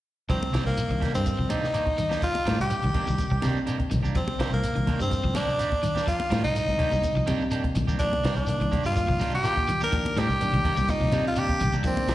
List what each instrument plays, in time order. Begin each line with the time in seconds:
0.29 fingered electric bass C2, clean electric guitar D#3 F3 A#3 D4 G4, tenor saxophone C4, kick, closed hi-hat, shekere
0.41 muted clean electric guitar stroke, high conga
0.53 fingered electric bass C2, clean electric guitar D#3 G3 A#3 D4 G4, snare, closed hi-hat, shekere
0.65 fingered electric bass C2, tenor saxophone A#3, muted clean electric guitar stroke, snare, shekere
0.77 closed hi-hat, low conga, shekere
0.90 fingered electric bass C2, clean electric guitar D#3, muted clean electric guitar stroke, closed hi-hat
1.00 clean electric guitar D#3 A#3 D4 G4, kick, snare, closed hi-hat, high conga, low conga, shekere
1.13 fingered electric bass G2, clean electric guitar G3, tenor saxophone C4, muted clean electric guitar stroke, closed hi-hat, high conga, shekere
1.25 muted clean electric guitar stroke, kick, closed hi-hat, shekere
1.38 fingered electric bass C2, clean electric guitar F3, muted clean electric guitar stroke, kick
1.49 clean electric guitar D#3 A#3 D4 G4, tenor saxophone D#4, closed hi-hat, high conga, shekere
1.63 snare, shekere
1.73 clean electric guitar D#3 A#3 D4 G4, closed hi-hat, shekere
1.85 muted clean electric guitar stroke, kick, high conga
1.97 clean electric guitar D#3, muted clean electric guitar stroke, closed hi-hat, low conga, shekere
2.09 clean electric guitar A#3 D4 G4, snare, high conga, shekere
2.22 tenor saxophone F4, muted clean electric guitar stroke, kick, closed hi-hat, shekere
2.33 muted clean electric guitar stroke, closed hi-hat, high conga
2.45 fingered electric bass A2, clean electric guitar D#3 G3 A#3 D4 G4, snare, closed hi-hat, shekere
2.59 fingered electric bass C2, tenor saxophone G4, muted clean electric guitar stroke, shekere
2.70 closed hi-hat, low conga, shekere
2.83 fingered electric bass C2, clean electric guitar D#3, muted clean electric guitar stroke, closed hi-hat
2.94 clean electric guitar D#3 A#3 D4 G4, kick, closed hi-hat, high conga, low conga, shekere
3.06 fingered electric bass C2, clean electric guitar D#3, muted clean electric guitar stroke, high conga, shekere
3.18 muted clean electric guitar stroke, kick, closed hi-hat, high conga, shekere
3.31 fingered electric bass C2, muted clean electric guitar stroke, kick
3.42 fingered electric bass C3, clean electric guitar D#3 A#3 D4 G4, snare, closed hi-hat, high conga, low conga, shekere
3.57 shekere
3.66 clean electric guitar D#3 A#3 D4 G4, closed hi-hat, shekere
3.78 muted clean electric guitar stroke, kick, closed hi-hat, high conga
3.90 fingered electric bass C2, clean electric guitar D#3, muted clean electric guitar stroke, closed hi-hat, low conga, shekere
4.03 fingered electric bass C2, clean electric guitar A#3 D4 G4, shekere
4.15 clean electric guitar F3, tenor saxophone C4, kick, closed hi-hat, shekere
4.27 muted clean electric guitar stroke, high conga
4.39 fingered electric bass C2, clean electric guitar D#3 G3 A#3 D4 G4, snare, closed hi-hat, shekere
4.52 fingered electric bass C2, tenor saxophone A#3, muted clean electric guitar stroke, shekere
4.64 closed hi-hat, shekere
4.75 fingered electric bass C2, clean electric guitar D#3, muted clean electric guitar stroke, closed hi-hat
4.87 clean electric guitar D#3 A#3 D4 G4, kick, closed hi-hat, high conga, low conga, shekere
4.99 fingered electric bass G2, clean electric guitar G3, tenor saxophone C4, muted clean electric guitar stroke, closed hi-hat, shekere
5.10 muted clean electric guitar stroke, kick, closed hi-hat, high conga, shekere
5.23 fingered electric bass C2, clean electric guitar F3, muted clean electric guitar stroke, kick
5.34 clean electric guitar D#3 A#3 D4 G4, tenor saxophone D4, snare, closed hi-hat, high conga, low conga, shekere
5.49 shekere
5.58 clean electric guitar D#3 A#3 D4 G4, closed hi-hat, shekere
5.71 muted clean electric guitar stroke, kick, high conga
5.83 clean electric guitar D#3, muted clean electric guitar stroke, closed hi-hat, low conga, shekere
5.95 clean electric guitar A#3 D4 G4, snare, high conga, shekere
6.07 clean electric guitar F3, tenor saxophone F4, kick, closed hi-hat, shekere
6.19 muted clean electric guitar stroke, closed hi-hat, high conga
6.30 fingered electric bass A2, clean electric guitar D#3 G3 A#3 D4 G4, snare, closed hi-hat, shekere
6.43 fingered electric bass C2, tenor saxophone D#4, muted clean electric guitar stroke, shekere
6.56 closed hi-hat, shekere
6.67 fingered electric bass C2, muted clean electric guitar stroke, closed hi-hat
6.78 clean electric guitar D#3 A#3 D4 G4, kick, closed hi-hat, high conga, low conga, shekere
6.91 fingered electric bass C2, clean electric guitar G3, muted clean electric guitar stroke, high conga, shekere
7.02 muted clean electric guitar stroke, kick, closed hi-hat, high conga, shekere
7.15 fingered electric bass C2, clean electric guitar F3, muted clean electric guitar stroke
7.26 fingered electric bass C3, clean electric guitar D#3 A#3 D4 G4, closed hi-hat, high conga, low conga, shekere
7.40 shekere
7.51 clean electric guitar D#3 A#3 D4 G4, closed hi-hat, shekere
7.64 muted clean electric guitar stroke, kick, closed hi-hat, high conga
7.75 fingered electric bass C2, clean electric guitar D#3, muted clean electric guitar stroke, closed hi-hat, low conga, shekere
7.87 fingered electric bass C2, clean electric guitar A#3 D4 G4, kick, high conga, shekere
7.99 tine electric piano D#3 A#3 D4, clean electric guitar F3, tenor saxophone D4, kick, closed hi-hat, shekere
8.11 muted clean electric guitar stroke, high conga
8.23 fingered electric bass C2, clean electric guitar D#3 G3 A#3 D4 G4, snare, closed hi-hat, shekere
8.36 fingered electric bass C2, tenor saxophone D4, muted clean electric guitar stroke, shekere
8.47 tine electric piano D#3 A#3 D4, closed hi-hat, low conga, shekere
8.60 fingered electric bass C2, clean electric guitar D#3, muted clean electric guitar stroke, closed hi-hat
8.71 clean electric guitar D#3 A#3 D4 G4, kick, closed hi-hat, high conga, low conga, shekere
8.84 fingered electric bass G2, clean electric guitar G3, tenor saxophone F4, muted clean electric guitar stroke, closed hi-hat, shekere
8.95 tine electric piano D#3 A#3 F4, muted clean electric guitar stroke, kick, closed hi-hat, shekere
9.08 fingered electric bass C2, clean electric guitar F3, muted clean electric guitar stroke, kick
9.19 clean electric guitar D#3 A#3 D4 G4, closed hi-hat, high conga, low conga, shekere
9.32 tenor saxophone G4, shekere
9.43 clean electric guitar D#3 A#3 D4 G4, tine electric piano D#3 A#3 F4, closed hi-hat, shekere
9.57 muted clean electric guitar stroke, kick, high conga
9.67 clean electric guitar D#3, muted clean electric guitar stroke, closed hi-hat, low conga, shekere
9.80 clean electric guitar A#3 D4 G4, tenor saxophone A#4, high conga, shekere
9.92 tine electric piano D#3 A#3 D4, clean electric guitar F3, kick, closed hi-hat, shekere
10.05 muted clean electric guitar stroke, closed hi-hat, high conga
10.16 fingered electric bass A2, clean electric guitar D#3 G3 A#3 D4 G4, tenor saxophone G4, snare, closed hi-hat, shekere
10.29 fingered electric bass C2, muted clean electric guitar stroke, shekere
10.40 tine electric piano D#3 A#3 D4, closed hi-hat, low conga, shekere
10.53 fingered electric bass C2, clean electric guitar D#3, muted clean electric guitar stroke, closed hi-hat
10.64 clean electric guitar D#3 A#3 D4 G4, muted fingered electric bass stroke, kick, closed hi-hat, high conga, low conga, shekere
10.77 fingered electric bass C2, clean electric guitar G3, muted clean electric guitar stroke, high conga, shekere
10.88 tine electric piano D#3 A#3 F4, tenor saxophone D#4, muted clean electric guitar stroke, kick, closed hi-hat, high conga, shekere
11.01 fingered electric bass C2, clean electric guitar F3, muted clean electric guitar stroke, kick
11.12 fingered electric bass C3, clean electric guitar D#3 A#3 D4 G4, closed hi-hat, high conga, low conga, shekere
11.25 tenor saxophone F4, shekere
11.36 clean electric guitar D#3 D4 G4, tine electric piano D#3 A#3 D4, tenor saxophone G4, muted clean electric guitar stroke, closed hi-hat, shekere
11.49 muted clean electric guitar stroke, kick, closed hi-hat, high conga
11.60 fingered electric bass C2, clean electric guitar D#3, muted clean electric guitar stroke, closed hi-hat, low conga, shekere
11.72 fingered electric bass C2, clean electric guitar A#3 D4 G4, high conga, shekere
11.84 tine electric piano D#3 A#3 D4, clean electric guitar F3, tenor saxophone C4, kick, closed hi-hat, shekere
11.97 muted clean electric guitar stroke, high conga
12.08 fingered electric bass C2, clean electric guitar D#3 G3 A#3 D4 G4, snare, closed hi-hat, shekere